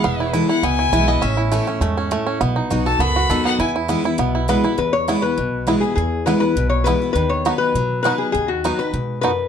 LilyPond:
<<
  \new Staff \with { instrumentName = "Fiddle" } { \time 4/4 \key e \major \tempo 4 = 202 fis''4 r8 fis''8 gis''4. dis''8 | e''8 r2. r8 | r4. a''8 b''4. fis''8 | gis''8 r2. r8 |
r1 | r1 | r1 | r1 | }
  \new Staff \with { instrumentName = "Resonator guitar played with a steel bar" } { \time 4/4 \key e \major r1 | r1 | r1 | r2. b'4 |
b'8 cis''4 b'2 gis'8 | gis'4 b'8 b'4 cis''8 b'4 | b'8 cis''4 b'4. b'8 gis'8 | gis'8 fis'4 b'4. b'4 | }
  \new Staff \with { instrumentName = "Five-string banjo" } { \time 4/4 \key e \major <b e'>8 e'8 e'8 e'8 b8 e'8 e'8 b8 | cis'8 e'8 a8 cis'8 a8 cis'8 a8 cis'8 | b8 dis'8 fis'8 a'8 b8 fis'8 a'8 b8 | e'8 e'8 b8 e'8 b8 e'8 b8 e'8 |
r4 <b e'>8 r4. <b e'>8 r8 | r4 <b e'>8 r4. <b e'>8 r8 | r4 <b dis' fis'>8 r4. <b dis' fis'>8 r8 | r4 <b dis' fis'>8 r4. <b dis' fis'>8 r8 | }
  \new Staff \with { instrumentName = "Steel-string acoustic guitar" } { \time 4/4 \key e \major << { r4 <e gis b e'>8 <b e'>8 r4 <e gis b e'>8 <b e'>8 | r4 <e a cis' e'>8 <cis' e'>8 r2 | r4 <fis b dis' fis'>8 <dis' fis'>8 r4 <fis b dis' fis'>4 | r4 <e gis b e'>8 <b e'>8 r4 <e gis b e'>8 <b e'>8 |
r4 <e gis b e'>8 <b e'>8 r4 <e gis b e'>8 <b e'>8 | r4 <e gis b e'>8 <b e'>8 r4 <e gis b e'>8 <b e'>8 | r4 <fis b dis' b'>4 r4 <fis b dis' b'>4 | r4 <fis b dis' b'>8 <dis' b'>8 r2 | } \\ { e,2 b,2 | a,2 gis,4 a,4 | b,2 fis,2 | e,2 b,2 |
e,2 b,2 | e,2 b,2 | dis2 fis2 | dis2 gis,4 fis,4 | } >> }
  \new Staff \with { instrumentName = "Upright bass" } { \clef bass \time 4/4 \key e \major e,,2 cis,4 b,,4 | a,,2 e,2 | b,,4 b,,4 cis,4 dis,4 | e,2 b,,2 |
e,2 b,,2 | e,2 b,,2 | dis,2 b,2 | dis,2 b,2 | }
>>